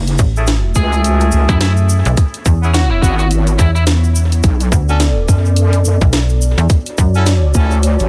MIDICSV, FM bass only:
0, 0, Header, 1, 2, 480
1, 0, Start_track
1, 0, Tempo, 566038
1, 1844, Time_signature, 4, 2, 24, 8
1, 6859, End_track
2, 0, Start_track
2, 0, Title_t, "FM bass"
2, 0, Program_c, 0, 39
2, 162, Note_on_c, 0, 33, 89
2, 627, Note_off_c, 0, 33, 0
2, 1262, Note_on_c, 0, 42, 95
2, 1720, Note_off_c, 0, 42, 0
2, 1745, Note_on_c, 0, 35, 96
2, 1828, Note_off_c, 0, 35, 0
2, 2083, Note_on_c, 0, 40, 94
2, 2547, Note_off_c, 0, 40, 0
2, 3044, Note_on_c, 0, 40, 97
2, 3748, Note_off_c, 0, 40, 0
2, 4001, Note_on_c, 0, 38, 94
2, 4466, Note_off_c, 0, 38, 0
2, 5099, Note_on_c, 0, 35, 96
2, 5559, Note_off_c, 0, 35, 0
2, 5577, Note_on_c, 0, 40, 97
2, 5664, Note_off_c, 0, 40, 0
2, 5921, Note_on_c, 0, 42, 93
2, 6386, Note_off_c, 0, 42, 0
2, 6859, End_track
0, 0, End_of_file